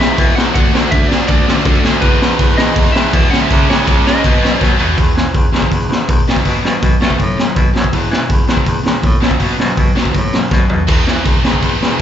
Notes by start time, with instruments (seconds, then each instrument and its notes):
Already playing: baritone saxophone E2, distorted electric guitar E2 B2 E3
0.00 overdriven electric guitar E2 B2 E3, lead electric guitar E5, snare
0.18 overdriven electric guitar E2 B2 E3, baritone saxophone B2, kick, crash
0.36 overdriven electric guitar E2 B2 E3, baritone saxophone E2, lead electric guitar F#5, snare
0.54 baritone saxophone D2, overdriven electric guitar D3 A3 D4, lead electric guitar F#5, kick, crash
0.73 baritone saxophone D2, overdriven electric guitar D3 A3 D4, snare
0.91 baritone saxophone D2, overdriven electric guitar D3 A3 D4, lead electric guitar E5, kick, crash
1.08 overdriven electric guitar D3 A3 D4, lead electric guitar D5, snare
1.27 baritone saxophone D2, overdriven electric guitar D3 A3 D4, lead electric guitar D5, kick, crash
1.47 baritone saxophone D2, overdriven electric guitar D3 A3 D4, snare
1.65 baritone saxophone D2, overdriven electric guitar D3 A3 D4, lead electric guitar A4, kick, crash
1.83 baritone saxophone D2, overdriven electric guitar D3 A3 D4, snare
2.01 baritone saxophone E2, overdriven electric guitar E2 B2 E3, lead electric guitar B4, kick, crash
2.21 baritone saxophone E2, overdriven electric guitar E2 B2 E3, snare
2.39 baritone saxophone E2, overdriven electric guitar E2 B2 E3, kick, crash
2.58 baritone saxophone E2, overdriven electric guitar E2 B2 E3, lead electric guitar D#5, snare
2.76 baritone saxophone E2, overdriven electric guitar E2 B2 E3, kick, crash
2.92 baritone saxophone E2, overdriven electric guitar E2 B2 E3, lead electric guitar E5, snare
3.12 overdriven electric guitar E2 B2 E3, baritone saxophone B2, kick, crash
3.30 overdriven electric guitar C#3 G#3 C#4, lead electric guitar F#5, snare
3.42 lead electric guitar E5
3.48 baritone saxophone C#2, overdriven electric guitar C#3 G#3 C#4, kick, crash
3.66 baritone saxophone C#2, overdriven electric guitar C#3 G#3 C#4
3.70 lead electric guitar C#5, snare
3.85 baritone saxophone C#2, overdriven electric guitar C#3 G#3 C#4, kick, crash
4.05 overdriven electric guitar C#3 G#3 C#4, lead electric guitar D#5, snare
4.23 overdriven electric guitar B2 F#3 B3, baritone saxophone B2, kick, crash
4.40 overdriven electric guitar B2 F#3 B3, baritone saxophone B2
4.45 snare
4.58 overdriven electric guitar B2 F#3 B3, baritone saxophone B2, lead electric guitar C#5, kick
4.63 snare
4.78 overdriven electric guitar B2 F#3 B3, baritone saxophone B2, floor tom
4.97 overdriven electric guitar E2 B2 E3, baritone saxophone E2, kick, open hi-hat
5.16 overdriven electric guitar E2 B2, baritone saxophone E3, snare
5.34 overdriven electric guitar E2 B2, baritone saxophone E2, kick, open hi-hat
5.52 overdriven electric guitar E2 B2 E3, baritone saxophone E2, snare
5.62 kick
5.71 overdriven electric guitar E2 B2, baritone saxophone E2, kick, open hi-hat
5.89 baritone saxophone E2, overdriven electric guitar E2 B2, snare
6.08 overdriven electric guitar E2 B2, baritone saxophone E2, kick, open hi-hat
6.27 overdriven electric guitar B2 F#3 B3, baritone saxophone B2, snare
6.36 kick
6.44 overdriven electric guitar B2 F#3 B3, baritone saxophone B2, kick, open hi-hat
6.64 baritone saxophone B2, overdriven electric guitar B2 F#3, snare
6.82 overdriven electric guitar B2 F#3, baritone saxophone B2, kick, open hi-hat
7.01 overdriven electric guitar B2 F#3 B3, baritone saxophone A3, snare
7.10 kick
7.19 baritone saxophone A2, overdriven electric guitar B2 F#3, kick, open hi-hat
7.38 overdriven electric guitar B2 F#3, snare
7.56 baritone saxophone B2, overdriven electric guitar B2 F#3, kick, open hi-hat
7.74 baritone saxophone F#2, overdriven electric guitar B2 F#3, snare
7.84 kick
7.93 overdriven electric guitar E2 B2 E3, baritone saxophone E2, kick, open hi-hat
8.11 overdriven electric guitar E2 B2, baritone saxophone E3, snare
8.29 overdriven electric guitar E2 B2, baritone saxophone E2, kick, open hi-hat
8.47 overdriven electric guitar E2 B2 E3, baritone saxophone E2, snare
8.57 kick
8.64 overdriven electric guitar E2 B2, baritone saxophone E2, kick, open hi-hat
8.84 overdriven electric guitar E2 B2, baritone saxophone E2, snare
9.02 overdriven electric guitar E2 B2, baritone saxophone A2, kick, open hi-hat
9.20 overdriven electric guitar B2 F#3 B3, baritone saxophone B2, snare
9.31 kick
9.38 overdriven electric guitar B2 F#3 B3, baritone saxophone B2, kick, open hi-hat
9.58 overdriven electric guitar B2 F#3, baritone saxophone B2, snare
9.77 overdriven electric guitar B2 F#3, baritone saxophone B2, kick, open hi-hat
9.95 overdriven electric guitar B2 F#3 B3, snare
10.05 kick
10.13 baritone saxophone A2, overdriven electric guitar B2 F#3, kick, open hi-hat
10.33 overdriven electric guitar B2 F#3, snare
10.51 overdriven electric guitar B2 F#3, baritone saxophone B2, kick, snare
10.69 overdriven electric guitar B2 F#3, baritone saxophone B2, floor tom
10.88 overdriven electric guitar E2 B2 E3, baritone saxophone E2, kick, crash
11.06 overdriven electric guitar E2 B2, baritone saxophone E3, snare
11.24 overdriven electric guitar E2 B2, baritone saxophone E2, kick, open hi-hat
11.43 overdriven electric guitar E2 B2 E3, baritone saxophone E2, snare
11.53 kick
11.60 overdriven electric guitar E2 B2, baritone saxophone E2, distorted electric guitar E3, kick, open hi-hat
11.81 overdriven electric guitar E2 B2, baritone saxophone E2, snare